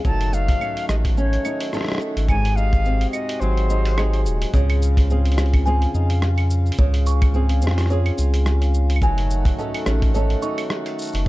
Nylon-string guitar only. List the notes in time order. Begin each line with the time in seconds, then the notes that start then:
Already playing: C4 F4 G#4
0.05 F#3
0.33 D#4
0.61 C#4
1.18 C#4
1.45 D#4
1.74 C#4 D#4 A4
2.30 G#2
2.58 D#4
2.86 C4
3.42 F#3
3.70 D#4
3.98 C4 D#4 G#4
4.54 C#3
5.10 C4 F4 G#4
5.39 C4
5.67 C4 F4 G#4
5.95 D#4
6.11 F4
6.79 C#3
7.34 C4 F4 G#4
7.62 C4
7.91 C4 F4 G#4
8.18 F4
9.02 F#3
9.58 C#4 D#4 A4
9.87 C#4
10.15 C#4 D#4 A4
10.43 D#4